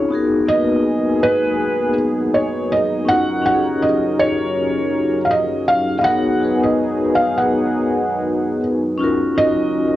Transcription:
Already playing: C4 C#4 D#4 F4 G#4 A#4 C#5
0.09 F#3 B3 D#4 F#4 G#4
0.14 G#4 A#4
0.46 A#3 D#4 F#4 D#5
0.50 B3 G#4 B4
1.23 B4
2.34 C#5
2.72 D#5
3.05 C#4 D#4 F4 A#4 F#5
3.10 F#4 A#4
3.42 C#4 D#4 F#5
3.46 F#4 G4
3.54 G#4
3.82 D#5
4.19 C#5
5.25 F5
5.31 D#5
5.68 F5
5.99 B3 F5
6.03 B3 D#4 F#4 G#4 F#5
6.08 A#4
6.39 B3 D#4 F#4
6.43 G#4 B4
6.64 D#5
7.15 F5
7.38 F#5
8.98 C#4 D#4 F4 A#4
9.02 F#4 A#4
9.35 C#4 D#4 F4 D#5
9.39 F#4 A#4

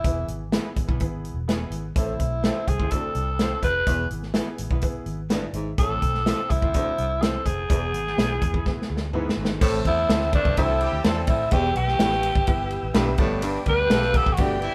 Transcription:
Already playing: E4
0.04 E1 E3 B3 E4 G#4 B4, kick, closed hi-hat
0.28 G#1, closed hi-hat
0.52 B3 E4 G#4 B4, snare, closed hi-hat
0.76 A1, kick, closed hi-hat
0.88 B1 B3 E4 G#4 B4, kick
1.00 G#1 B3 E4 G#4 B4, kick, closed hi-hat
1.25 closed hi-hat
1.34 E1
1.48 B3 E4 G#4 B4, snare, closed hi-hat
1.70 G#1, closed hi-hat
1.96 A1 A2 C4 E4 A4 B4, kick, closed hi-hat
2.03 C5
2.20 B1, kick, closed hi-hat
2.43 C4 E4 A4 C5, snare, closed hi-hat
2.68 C2 G#4, kick, closed hi-hat
2.79 D2 C4 E4 A4 C5, kick
2.91 D2 C4 E4 A4 D5, kick, closed hi-hat
3.03 muted fingered electric bass stroke
3.15 C2, closed hi-hat
3.39 C4 E4 A4 C5, snare, closed hi-hat
3.62 F1 B4, kick, closed hi-hat
3.87 E1 E2 E3 B3 E4 G#4 B4, kick, closed hi-hat
4.11 G#1, closed hi-hat
4.23 snare
4.34 B3 E4 G#4 B4, snare, closed hi-hat
4.58 A1, closed hi-hat
4.71 B1 B3 E4 G#4 B4, kick
4.81 B3 E4 G#4 B4, kick, closed hi-hat
4.95 muted fingered electric bass stroke
5.06 G#1, closed hi-hat
5.30 G2 B3 E4 G#4 B4 D5, snare, closed hi-hat
5.53 G#1 G#2 E5, closed hi-hat
5.78 A1 A2 C4 E4 A4 C5, kick, closed hi-hat
6.02 B1, kick, closed hi-hat
6.15 snare
6.26 C4 E4 A4 C5, snare, closed hi-hat
6.50 C2 E4, kick, closed hi-hat
6.62 D2 C4 E4 A4 C5, kick
6.74 D2 C4 E4 A4 C5, kick, closed hi-hat
6.87 muted fingered electric bass stroke
6.98 C2, closed hi-hat
7.21 C4 E4 A4 C5, snare, closed hi-hat
7.45 F1 G#4, kick, closed hi-hat
7.69 E1 E2 E3 B3 E4 G#4 A4, kick, closed hi-hat
7.77 B4
7.94 G#1, closed hi-hat
8.07 snare
8.17 B1 B3 E4 G#4 B4, snare, closed hi-hat
8.42 E2, kick, closed hi-hat
8.53 B3 E4 G#4 B4, kick
8.65 B3 E4 G#4 B4, kick, snare
8.77 muted fingered electric bass stroke
8.82 snare
8.90 D2
8.97 snare
9.13 G#2 B3 E4 G#4 B4, mid tom
9.29 snare
9.37 G#1 G#2
9.45 snare
9.60 A1 A2 C4 E4 A4 C5 E5 A5 E6, kick, crash
9.85 E2 A3 C4 E4 C5, kick, ride
10.09 D2 E3 A3 C4 E4 A4 C5 E5, snare, ride
10.21 snare
10.32 C3 E3 A3 D4 E4, kick, ride
10.45 C2, kick
10.57 C2 D2 E3 A3 C4 E4 A4 C5 G5, kick, ride
10.80 G3 E4 G4, ride
10.92 D2
11.04 E2 E3 A3 C4 E4 A4 C5 D5, snare, ride
11.27 A2 E4, kick, ride
11.51 E1 E2 E3 B3 E4 F#4 G4 B4 E5 G5 E6, kick, ride
11.59 G4
11.76 B1 G4, ride
11.88 snare
11.99 A1 B3 E4 G4 B4 E5, snare, ride
12.11 snare
12.23 ride
12.35 G1, kick
12.47 G1 B3 E4 G4 B4 E5, kick, ride
12.70 ride
12.83 A1
12.94 B1 G2 B3 E4 G4 B4 E5 D6, snare, ride
13.18 G1 G2 A2 B3 D4 G4 B4 D5 D6, kick, ride
13.42 G2, ride
13.66 D2 G3 B3 D4 B4, kick, ride
13.90 B1 A3 B3 D4 F4 G4 A4 B4 E5, snare, ride
13.96 F5
14.02 snare
14.13 D3 G3 B3 G4 A4, kick, ride
14.26 A1, kick
14.33 F#4
14.37 G1 D2 D3 G3 B3 D4 G4 B4 D5, kick, ride
14.61 E3 C4 E4, ride

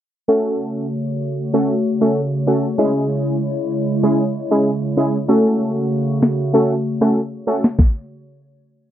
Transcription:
0.28 C#3 A3 C#4 F#4 A4 C#5
1.53 A3 C#4 F#4 A4
2.01 A3 C#4 F#4 A4
2.47 A3 C#4 F#4 A4
2.78 G#3 C#4 E4 G#4
4.03 G#3 C#4 E4 G#4
4.51 G#3 C#4 E4 G#4
4.97 G#3 C#4 E4 G#4
5.28 C#3 A3 C#4 F#4 A4
6.22 snare
6.53 A3 C#4 F#4 A4
7.01 A3 C#4 F#4 A4, cross-stick
7.47 A3 C#4 F#4 A4
7.64 snare
7.79 kick, snare

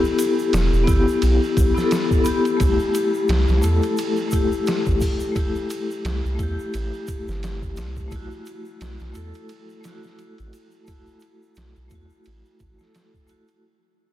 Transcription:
Already playing: B3 E4 G4 A4
0.04 shaker
0.19 ride, shaker
0.39 shaker
0.53 E1, snare, ride, shaker
0.72 E1, shaker
0.83 B3 E4, ride
0.88 G1 G4, kick, shaker
1.08 shaker
1.22 B1, ride, shaker
1.43 shaker
1.57 B1, kick, ride, shaker
1.74 B3 E4 A4, snare, shaker
1.91 snare, ride, shaker
2.11 kick, shaker
2.24 B3 E4 G4, ride, shaker
2.45 ride, shaker
2.57 C2 A3 E4, kick, ride, shaker
2.65 G4
2.79 shaker
2.95 ride, shaker
3.14 shaker
3.28 C2, snare, ride, shaker
3.48 C2, snare, shaker
3.61 E2 A3 E4 A4, ride, shaker
3.82 ride, shaker
3.97 ride, shaker
4.16 shaker
4.28 A3, shaker
4.32 E4 G4, kick, ride
4.52 shaker
4.67 snare, ride, shaker
4.86 A1, kick, shaker
5.01 kick, open hi-hat, shaker
5.20 shaker
5.32 A3
5.36 E4 G4, kick, ride, shaker
5.55 shaker
5.70 ride, shaker
5.91 shaker
6.04 C2, snare, ride, shaker
6.25 C2, shaker
6.35 E2 A3 E4, kick, ride
6.39 G4, shaker
6.59 shaker
6.74 A1, ride, shaker
6.93 shaker
7.07 kick, ride, shaker
7.28 G1, snare, shaker
7.43 snare, ride, shaker
7.62 kick, shaker
7.77 C2, snare, ride, shaker
7.96 kick, shaker
8.08 B1 A3 E4, kick, shaker
8.12 F#4, ride
8.31 shaker
8.46 ride, shaker
8.65 shaker
8.81 B1, snare, ride, shaker
8.99 B1, snare, shaker
9.13 E2 A3 E4, ride, shaker
9.17 A4
9.34 ride, shaker
9.49 ride, shaker
9.69 shaker
9.81 A3 E4, ride, shaker
9.85 F#4, snare
10.03 snare, shaker
10.19 ride, shaker
10.38 A1, ride, shaker
10.53 ride, shaker
10.71 shaker
10.84 A3 E4, kick, ride, shaker
10.92 F#4
11.06 shaker
11.20 ride, shaker
11.42 shaker
11.55 B1, snare, ride, shaker
11.76 B1, shaker
11.88 E2 A3 E4, kick, ride, shaker
11.95 F#4
12.10 shaker
12.24 A1, ride, shaker
12.45 shaker
12.60 A1, kick, ride, shaker
12.78 A3 E4 A4, snare, shaker
12.95 snare, ride, shaker
13.14 kick, shaker
13.27 A3 E4 F#4, ride, shaker
13.48 ride, shaker

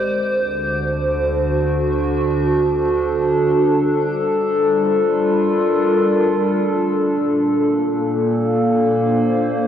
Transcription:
Already playing: C5 D5 D6
0.01 D2 D3
0.26 D4
0.33 F#4
1.60 A4
3.58 G3
4.39 F4
5.16 A#4
7.10 A#2
7.25 A#3
8.69 C5

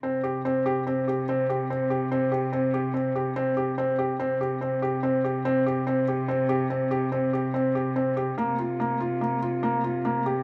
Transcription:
0.03 C3 C4
0.24 G4
0.45 C4
0.66 G4
0.87 C4
1.08 G4
1.29 C4
1.50 G4
1.70 C4
1.90 G4
2.12 C4
2.32 G4
2.53 C4
2.74 G4
2.94 C4
3.15 G4
3.36 C4
3.57 G4
3.78 C4
3.98 G4
4.20 C3 C4
4.41 G4
4.61 C4
4.82 G4
5.03 C4
5.24 G4
5.45 C4
5.66 G4
5.87 C4
6.08 G4
6.28 C4
6.49 G4
6.70 C4
6.91 G4
7.12 C4
7.33 G4
7.54 C4
7.75 G4
7.96 C4
8.17 G4
8.38 C3 A#3
8.59 F4
8.80 A#3
9.00 F4
9.21 A#3
9.42 F4
9.63 A#3
9.84 F4
10.05 A#3
10.26 G4

